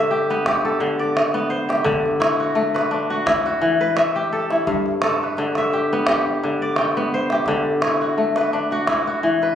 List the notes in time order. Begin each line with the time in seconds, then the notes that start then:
Already playing: G2 D3 A4 B4 E5
0.11 G4
0.30 B3
0.46 G4, calabash thump, calabash click
0.65 A4
0.80 D3
0.99 D5
1.17 calabash click
1.34 B3
1.50 C5
1.69 G4, calabash click
1.84 D3, calabash thump
2.06 calabash click
2.20 E4, calabash click
2.40 F#4
2.55 A3, calabash click
2.74 B4, calabash click
2.91 D4
3.10 F#4
3.26 E4, calabash thump, calabash click
3.46 F#4
3.62 E3
3.81 B4
3.97 E5, calabash click
4.16 G4
4.33 A4
4.51 E4, calabash click
4.67 G2, calabash thump
4.86 calabash click
5.02 A4, calabash click
5.23 B4
5.37 D3, calabash click
5.55 E5, calabash click
5.73 G4
5.93 B3
6.07 G4, calabash thump, calabash click
6.43 D3
6.62 D5
6.76 G5, calabash click
6.97 B3
7.14 C5
7.30 G4, calabash click
7.46 D3, calabash thump, calabash click
7.82 E4, calabash click
8.02 F#4
8.18 A3
8.36 B4, calabash click
8.53 D4
8.71 F#4, calabash click
8.87 E4, calabash thump, calabash click
9.07 F#4
9.23 E3
9.42 B4, calabash click